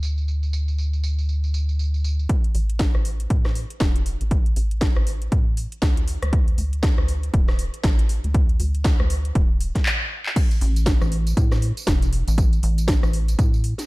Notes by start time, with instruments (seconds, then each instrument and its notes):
Already playing: analog synth bass D2
0.03 tambourine
0.18 tambourine
0.28 tambourine
0.43 tambourine
0.53 tambourine
0.68 tambourine
0.78 tambourine
0.93 tambourine
1.04 tambourine
1.19 tambourine
1.29 tambourine
1.44 tambourine
1.54 tambourine
1.69 tambourine
1.79 tambourine
1.94 tambourine
2.04 tambourine
2.19 tambourine
2.29 kick, closed hi-hat
2.44 closed hi-hat
2.55 analog synth bass A1, open hi-hat
2.70 closed hi-hat
2.79 kick, snare, closed hi-hat
2.95 analog synth bass A1, cross-stick
3.05 open hi-hat
3.20 closed hi-hat
3.30 analog synth bass A2, kick, closed hi-hat
3.45 cross-stick, snare
3.55 open hi-hat
3.70 closed hi-hat
3.80 analog synth bass E1, kick, snare, closed hi-hat
3.96 closed hi-hat
4.06 open hi-hat
4.21 analog synth bass A1, closed hi-hat
4.31 kick, closed hi-hat
4.46 closed hi-hat
4.56 analog synth bass A1, open hi-hat
4.71 closed hi-hat
4.81 kick, snare, closed hi-hat
4.96 analog synth bass A1, cross-stick
5.07 open hi-hat
5.22 closed hi-hat
5.32 analog synth bass A2, kick, closed hi-hat
5.57 open hi-hat
5.72 closed hi-hat
5.82 analog synth bass D2, kick, snare, closed hi-hat
5.97 closed hi-hat
6.08 open hi-hat
6.22 analog synth bass D2, cross-stick, closed hi-hat
6.33 kick, closed hi-hat
6.48 closed hi-hat
6.58 analog synth bass D2, open hi-hat
6.73 closed hi-hat
6.83 kick, snare, closed hi-hat
6.98 analog synth bass D2, cross-stick
7.08 open hi-hat
7.23 closed hi-hat
7.34 analog synth bass D1, kick, closed hi-hat
7.48 cross-stick, snare
7.59 open hi-hat
7.74 closed hi-hat
7.84 analog synth bass A1, kick, snare, closed hi-hat
7.99 closed hi-hat
8.09 open hi-hat
8.24 analog synth bass D2, closed hi-hat
8.34 kick, closed hi-hat
8.49 closed hi-hat
8.60 analog synth bass D2, open hi-hat
8.75 closed hi-hat
8.84 kick, snare, closed hi-hat
9.00 analog synth bass D2, cross-stick
9.10 open hi-hat
9.25 closed hi-hat
9.35 analog synth bass D1, kick, closed hi-hat
9.61 open hi-hat
9.75 kick, snare, closed hi-hat
9.86 clap
10.26 clap
10.36 kick, closed hi-hat, tambourine, crash
10.51 closed hi-hat, tambourine
10.61 analog synth bass A1, open hi-hat
10.76 closed hi-hat, tambourine
10.86 kick, snare, closed hi-hat, tambourine
11.02 analog synth bass A1, cross-stick, tambourine
11.12 open hi-hat
11.27 closed hi-hat, tambourine
11.37 analog synth bass A2, kick, closed hi-hat, tambourine
11.51 cross-stick, snare, tambourine
11.62 open hi-hat
11.77 closed hi-hat, tambourine
11.87 analog synth bass E1, kick, snare, closed hi-hat, tambourine
12.02 closed hi-hat, tambourine
12.13 open hi-hat
12.28 analog synth bass A1, closed hi-hat, tambourine
12.38 kick, closed hi-hat, tambourine
12.53 closed hi-hat, tambourine
12.63 analog synth bass A1, open hi-hat
12.78 closed hi-hat, tambourine
12.88 kick, snare, closed hi-hat, tambourine
13.03 analog synth bass A1, cross-stick, tambourine
13.13 open hi-hat
13.28 closed hi-hat, tambourine
13.39 analog synth bass A2, kick, closed hi-hat, tambourine
13.54 tambourine
13.64 open hi-hat
13.78 snare, closed hi-hat, tambourine